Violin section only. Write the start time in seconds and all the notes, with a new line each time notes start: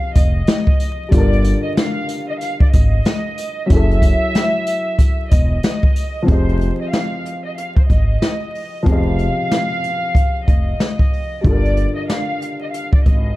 Already playing: F5
0.16 D#5
1.14 D5
1.63 D#5
1.78 F5
2.29 D#5
2.40 F5
2.62 D5
2.72 D#5
3.70 E5
5.30 D#5
6.29 C5
6.81 D#5
6.91 F5
7.45 D#5
7.57 F5
7.77 C5
7.87 D#5
8.88 F5
10.48 D#5
11.46 D5
11.96 D#5
12.11 F5
12.62 D#5
12.72 F5
12.94 D5
13.04 D#5